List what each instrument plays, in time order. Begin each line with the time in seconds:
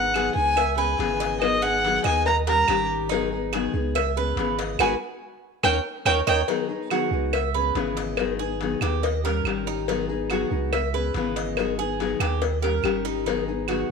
Already playing: sub bass G#1, nylon-string guitar B3 D#4 G#4, cuban tres D#4, violin F#5
0.14 nylon-string guitar D#3 F#3 B3 D#4 G#4, cuban tres G#4, cowbell, claves
0.35 sub bass C#2, nylon-string guitar B3 D#4 G#4, violin G#5
0.56 cuban tres E5, muted nylon-string guitar stroke, cowbell, claves
0.77 nylon-string guitar B3 C#4 G#4, cuban tres B4, violin G#5
0.97 sub bass G#1, nylon-string guitar C#3 E3 B3 C#4 G#4, cowbell
1.20 cuban tres D#5, cowbell
1.41 nylon-string guitar D#3 F#3 B3 D#4 G#4, violin D#5, cowbell, claves
1.62 nylon-string guitar B3 D#4 G#4, cuban tres G#4, violin F#5
1.84 nylon-string guitar D#3 F#3 B3 D#4 G#4, cowbell
2.04 sub bass D#2, nylon-string guitar B3 D#4 G#4, cuban tres D#5, violin G#5, cowbell, claves
2.26 violin A#5, muted nylon-string guitar stroke, cowbell
2.47 nylon-string guitar G3 C#4 G4, cuban tres A#4, violin A#5, cowbell
2.68 sub bass G#1, nylon-string guitar D#3 G3 C#4 G4, cuban tres G4, cowbell, claves
3.09 nylon-string guitar D#3 F#3 B3 D#4 G#4, cuban tres D#4, cowbell
3.33 nylon-string guitar B3 D#4 G#4
3.53 nylon-string guitar D#3 F#3 B3 D#4 G#4, cuban tres G#4, cowbell, claves
3.73 sub bass C#2, nylon-string guitar B3 D#4 G#4
3.95 cuban tres E5, muted nylon-string guitar stroke, cowbell, claves
4.17 nylon-string guitar B3 C#4 G#4, cuban tres B4
4.36 sub bass G#1, nylon-string guitar C#3 E3 B3 C#4 G#4, cowbell
4.59 cuban tres D#5, cowbell
4.79 sub bass G#1, nylon-string guitar G#3 B3 D#4, cuban tres F#4 G#4 B4, violin G#5, cowbell, claves
5.63 sub bass D#2, nylon-string guitar A#3 C#4 D#4, cuban tres A#4 C#5 D#5, violin G5, cowbell, claves
6.05 sub bass D#2, nylon-string guitar A#3 C#4 D#4, cuban tres A#4 C#5 D#5, violin G5, cowbell, claves
6.27 sub bass D#2, nylon-string guitar A#3 C#4 D#4, cuban tres A#4 C#5 D#5, violin G5, cowbell, claves
6.48 nylon-string guitar D#3 F#3 B3 D#4 G#4, cuban tres D#4, cowbell
6.69 nylon-string guitar B3 D#4 G#4
6.90 nylon-string guitar D#3 F#3 B3 D#4 G#4, cuban tres F#4, cowbell, claves
7.11 sub bass C#2, nylon-string guitar B3 D#4 G#4
7.33 cuban tres E5, muted nylon-string guitar stroke, cowbell, claves
7.54 nylon-string guitar B3 C#4 G#4, cuban tres B4
7.75 sub bass G#1, nylon-string guitar C#3 E3 B3 C#4 G#4, cowbell
7.97 cuban tres D#5, cowbell
8.17 nylon-string guitar D#3 F#3 B3 D#4 G#4, cowbell, claves
8.39 nylon-string guitar B3 D#4 G#4, cuban tres G#4
8.61 nylon-string guitar D#3 F#3 B3 D#4 G#4, cowbell
8.81 sub bass D#2, nylon-string guitar B3 D#4 G#4, cuban tres G4, cowbell, claves
9.03 cuban tres D#5, muted nylon-string guitar stroke, cowbell
9.24 nylon-string guitar G3 C#4 G4, cuban tres A#4, cowbell
9.44 sub bass G#1, nylon-string guitar D#3 G3 C#4 G4, cowbell, claves
9.67 cuban tres D#4
9.88 nylon-string guitar D#3 F#3 B3 D#4 G#4, cuban tres D#4, cowbell
10.09 nylon-string guitar B3 D#4 G#4
10.30 nylon-string guitar D#3 F#3 B3 D#4 G#4, cuban tres F#4, cowbell, claves
10.51 sub bass C#2, nylon-string guitar B3 D#4 G#4
10.73 cuban tres E5, muted nylon-string guitar stroke, cowbell, claves
10.94 nylon-string guitar B3 C#4 G#4, cuban tres B4
11.14 sub bass G#1, nylon-string guitar C#3 E3 B3 C#4 G#4, cowbell
11.36 cuban tres D#5, cowbell
11.57 nylon-string guitar D#3 F#3 B3 D#4 G#4, cowbell, claves
11.79 nylon-string guitar B3 D#4 G#4, cuban tres G#4
12.00 nylon-string guitar D#3 F#3 B3 D#4 G#4, cowbell
12.20 sub bass D#2, nylon-string guitar B3 D#4 G#4, cuban tres G4, cowbell, claves
12.42 cuban tres D#5, muted nylon-string guitar stroke, cowbell
12.62 nylon-string guitar G3 C#4 G4, cuban tres A#4, cowbell
12.82 sub bass G#1, nylon-string guitar D#3 G3 C#4 G4, cowbell, claves
13.05 cuban tres D#4
13.26 nylon-string guitar D#3 F#3 B3 D#4 G#4, cuban tres D#4, cowbell
13.48 nylon-string guitar B3 D#4 G#4
13.68 nylon-string guitar D#3 F#3 B3 D#4 G#4, cuban tres F#4, cowbell, claves